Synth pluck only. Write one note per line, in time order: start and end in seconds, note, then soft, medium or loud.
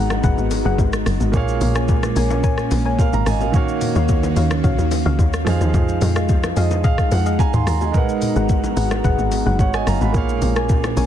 0.00 0.21 G#4 medium
0.00 0.21 B4 medium
0.00 0.22 F#5 medium
0.23 0.62 G#4 loud
0.23 0.62 B4 medium
0.23 0.62 F#5 loud
0.65 0.78 G#4 medium
0.65 0.78 B4 medium
0.65 0.79 F#5 medium
1.75 2.13 A#4 medium
1.75 2.13 C#5 medium
1.75 2.13 G#5 medium
2.16 2.41 A#4 medium
2.16 2.42 C#5 medium
2.16 2.42 G#5 medium
2.43 2.82 A#4 loud
2.43 2.82 C#5 medium
2.43 2.82 G#5 loud
2.85 2.98 A#4 medium
2.85 2.99 C#5 medium
2.85 2.99 G#5 medium
3.95 4.33 F#4 medium
3.95 4.33 C#5 medium
3.95 4.33 F5 medium
4.36 4.62 F#4 medium
4.36 4.62 C#5 medium
4.36 4.62 F5 medium
4.64 5.02 F#4 loud
4.64 5.02 C#5 medium
4.64 5.02 F5 loud
5.05 5.19 F#4 medium
5.05 5.19 C#5 medium
5.05 5.19 F5 medium
6.16 6.53 G#4 medium
6.16 6.53 D#5 medium
6.16 6.54 F5 medium
6.56 6.82 G#4 medium
6.56 6.82 D#5 medium
6.56 6.82 F5 medium
6.84 7.22 G#4 loud
6.84 7.23 D#5 medium
6.84 7.23 F5 loud
7.26 7.39 G#4 medium
7.26 7.39 D#5 medium
7.26 7.39 F5 medium
8.36 8.74 G#4 medium
8.36 8.74 B4 medium
8.36 8.74 F#5 medium
8.77 9.02 G#4 medium
8.77 9.02 B4 medium
8.77 9.02 F#5 medium
9.04 9.43 G#4 loud
9.04 9.43 B4 medium
9.04 9.43 F#5 loud
9.46 9.59 G#4 medium
9.46 9.59 B4 medium
9.46 9.59 F#5 medium
10.56 10.94 A#4 medium
10.56 10.94 C#5 medium
10.56 10.94 G#5 medium
10.97 11.06 A#4 medium
10.97 11.06 C#5 medium
10.97 11.06 G#5 medium